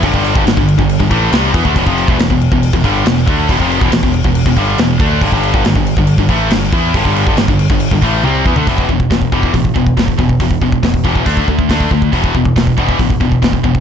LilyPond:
<<
  \new Staff \with { instrumentName = "Distorted electric guitar" } { \clef bass \time 4/4 \key e \minor \tempo 4 = 139 <g, d>16 <g, d g>8 <g, d>16 <g, d>16 <g, d>8 <g, d>8 <g, d>16 <a, e a>8 <c g c'>8 <e b>16 <d a>16 | <e, b,>16 <f, c f>8 <e, b,>16 <e, b,>16 <e, b,>8 <e, b,>8 <e, b,>16 <g, d g>8 <e, b,>8 <d a d'>8 | <e, b,>16 <f, c f>8 <e, b,>16 <e, b,>16 <e, b,>8 <e, b,>8 <e, b,>16 <g, d g>8 <e, b,>8 <d a d'>8 | <g, d>16 <g, d g>8 <g, d>16 <g, d>16 <g, d>8 <g, d>8 <g, d>16 <a, e a>8 <g, d>8 <e b e'>8 |
<g, d>16 <g, d g>8 <g, d>16 <g, d>16 <g, d>8 <g, d>8 <g, d>16 <a, e a>8 <c g c'>8 <e b>16 <d a>16 | <e, b, e>8 <e, b,>8 <e, b,>8 <e, b, e>8 <e, b,>8 <e, b,>8 <e, b,>8 <e, b,>8 | <e, b,>8 <e, b,>8 <e, b,>8 <e, b, e>8 <d a d'>8 <d a>8 <d a d'>8 <d a>8 | <e, b, e>8 <e, b,>8 <e, b,>8 <e, b, e>8 <e, b,>8 <e, b,>8 <e, b,>8 <e, b,>8 | }
  \new Staff \with { instrumentName = "Distorted electric guitar" } { \clef bass \time 4/4 \key e \minor <g, d>16 <g, d g>8 <g, d>16 <g, d>16 <g, d>8 <g, d>8 <g, d>16 <a, e a>8 <c g c'>8 <e b>16 <d a>16 | <e, b,>16 <f, c f>8 <e, b,>16 <e, b,>16 <e, b,>8 <e, b,>8 <e, b,>16 <g, d g>8 <e, b,>8 <d a d'>8 | <e, b,>16 <f, c f>8 <e, b,>16 <e, b,>16 <e, b,>8 <e, b,>8 <e, b,>16 <g, d g>8 <e, b,>8 <d a d'>8 | <g, d>16 <g, d g>8 <g, d>16 <g, d>16 <g, d>8 <g, d>8 <g, d>16 <a, e a>8 <g, d>8 <e b e'>8 |
<g, d>16 <g, d g>8 <g, d>16 <g, d>16 <g, d>8 <g, d>8 <g, d>16 <a, e a>8 <c g c'>8 <e b>16 <d a>16 | <e, b, e>8 <e, b,>8 <e, b,>8 <e, b, e>8 <e, b,>8 <e, b,>8 <e, b,>8 <e, b,>8 | <e, b,>8 <e, b,>8 <e, b,>8 <e, b, e>8 <d a d'>8 <d a>8 <d a d'>8 <d a>8 | <e, b, e>8 <e, b,>8 <e, b,>8 <e, b, e>8 <e, b,>8 <e, b,>8 <e, b,>8 <e, b,>8 | }
  \new Staff \with { instrumentName = "Picked electric bass" } { \clef bass \time 4/4 \key e \minor g,,16 g,,8 g,,16 g,,16 g,,8 g,,8 g,,16 a,,8 c,8 e,16 d,16 | e,,16 f,,8 e,,16 e,,16 e,,8 e,,8 e,,16 g,,8 e,,8 d,8 | e,,16 f,,8 e,,16 e,,16 e,,8 e,,8 e,,16 g,,8 e,,8 d,8 | g,,16 g,,8 g,,16 g,,16 g,,8 g,,8 g,,16 a,,8 g,,8 e,8 |
g,,16 g,,8 g,,16 g,,16 g,,8 g,,8 g,,16 a,,8 c,8 e,16 d,16 | e,,8 e,,8 e,,8 e,,8 a,,8 e,,8 e,,8 e,,8 | e,,8 e,,8 e,,8 e,,8 d,8 d,8 d,8 d,8 | e,,8 e,,8 e,,8 e,,8 a,,8 e,,8 e,,8 e,,8 | }
  \new DrumStaff \with { instrumentName = "Drums" } \drummode { \time 4/4 <cymc bd>16 bd16 cymc16 bd16 <cymc sn>16 bd16 cymc16 bd16 cymc16 bd16 <cymc bd>8 <cymc sn>8 <cymc bd>16 bd16 | <cymc bd>16 bd16 cymc16 bd16 <cymc sn>16 bd16 cymc16 bd16 cymc16 bd16 <cymc bd>8 <cymc sn>8 <cymc bd>8 | <cymc bd>16 bd16 cymc16 bd16 <cymc sn>16 bd16 cymc16 bd16 cymc16 bd16 <cymc bd>8 <cymc sn>8 <cymc bd>8 | <cymc bd>16 bd16 cymc16 bd16 <cymc sn>16 bd16 cymc16 bd16 cymc16 bd16 <cymc bd>8 <cymc sn>8 <cymc bd>8 |
<cymc bd>16 bd16 cymc16 bd16 <cymc sn>16 bd16 cymc16 bd16 cymc16 bd16 <cymc bd>8 tommh8 bd16 tomfh16 | <hho bd>16 bd16 bd16 bd16 <hho bd sn>16 bd16 bd16 bd16 <hho bd>16 bd16 bd16 bd16 <hho bd sn>16 bd16 bd16 bd16 | <hho bd>16 bd16 bd16 bd16 <hho bd sn>16 bd16 bd16 bd16 <hho bd>16 bd16 bd16 bd16 <hho bd sn>16 bd16 bd16 bd16 | <hho bd>16 bd16 bd16 bd16 <hho bd sn>16 bd16 bd16 bd16 <hho bd>16 bd16 bd16 bd16 <hho bd sn>16 bd16 bd16 bd16 | }
>>